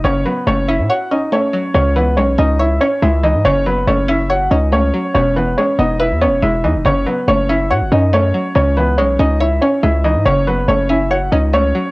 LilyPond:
<<
  \new Staff \with { instrumentName = "Upright piano" } { \time 4/4 \key fis \dorian \tempo 4 = 141 <cis' cis''>8 <b b'>8 <cis' cis''>8 <e' e''>8 <fis' fis''>8 <dis' dis''>8 <cis' cis''>4 | <cis' cis''>8 <b b'>8 <cis' cis''>8 <dis' dis''>8 <e' e''>8 <cis' cis''>8 <e' e''>8 <dis' dis''>8 | <cis' cis''>8 <b b'>8 <cis' cis''>8 <e' e''>8 <fis' fis''>8 <dis' dis''>8 <cis' cis''>4 | <cis' cis''>8 <b b'>8 <cis' cis''>8 <dis' dis''>8 <e' e''>8 <cis' cis''>8 <e' e''>8 <dis' dis''>8 |
<cis' cis''>8 <b b'>8 <cis' cis''>8 <e' e''>8 <fis' fis''>8 <dis' dis''>8 <cis' cis''>4 | <cis' cis''>8 <b b'>8 <cis' cis''>8 <dis' dis''>8 <e' e''>8 <cis' cis''>8 <e' e''>8 <dis' dis''>8 | <cis' cis''>8 <b b'>8 <cis' cis''>8 <e' e''>8 <fis' fis''>8 <dis' dis''>8 <cis' cis''>4 | }
  \new Staff \with { instrumentName = "Synth pluck" } { \time 4/4 \key fis \dorian cis8 fis8 a8 cis'8 cis''8 cis'8 a8 fis8 | cis8 e8 gis8 cis'8 cis''8 cis'8 gis8 e8 | cis8 fis8 a8 cis'8 cis''8 cis'8 a8 fis8 | b,8 e8 gis8 b8 b'8 b8 gis8 e8 |
cis8 fis8 a8 cis'8 cis''8 cis'8 a8 fis8 | cis8 e8 gis8 cis'8 cis''8 cis'8 gis8 e8 | cis8 fis8 a8 cis'8 cis''8 cis'8 a8 fis8 | }
  \new Staff \with { instrumentName = "808-style bass" } { \clef bass \time 4/4 \key fis \dorian fis,,8 r8 fis,,8. a,16 r2 | cis,4 b,,8 cis,4 r8 cis,8. gis,16 | fis,,4 fis,,4. cis,4 r8 | e,,4 r8 e,,8. e,16. e,,16. e,,8 e,16 e,,16 |
fis,,8 r8 fis,,4 a,16 fis,,16 fis,4 r8 | cis,4 b,,8 cis,4 r8 cis,8. gis,16 | fis,,4 fis,,4. cis,4 r8 | }
>>